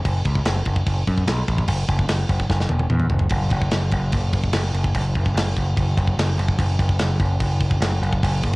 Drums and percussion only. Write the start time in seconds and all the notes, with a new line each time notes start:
0.05 kick, crash
0.25 kick, crash
0.35 kick
0.45 snare, crash
0.65 kick, crash
0.76 kick
0.86 kick, crash
1.07 kick, crash
1.17 kick
1.27 snare, crash
1.48 kick, crash
1.58 kick
1.68 kick, crash
1.88 kick, crash
1.99 kick
2.08 snare, crash
2.29 kick, crash
2.40 kick
2.50 kick, snare
2.60 snare
2.69 high tom
2.79 high tom
2.90 mid tom
2.99 mid tom
3.10 floor tom
3.19 floor tom
3.29 kick, crash
3.50 kick, crash
3.62 kick
3.71 snare, crash
3.91 kick, crash
4.12 kick, crash
4.33 kick, crash
4.43 kick
4.53 snare, crash
4.74 crash
4.84 kick
4.95 kick, crash
5.15 kick, crash
5.26 kick
5.37 snare, crash
5.57 kick, crash
5.77 kick, crash
5.98 kick, crash
6.08 kick
6.19 snare, crash
6.39 crash
6.49 kick
6.59 kick, crash
6.79 kick, crash
6.89 kick
6.99 snare, crash
7.20 kick, crash
7.40 kick, crash
7.60 kick, crash
7.71 kick
7.82 snare, crash
8.03 crash
8.13 kick
8.23 kick, crash
8.43 kick, crash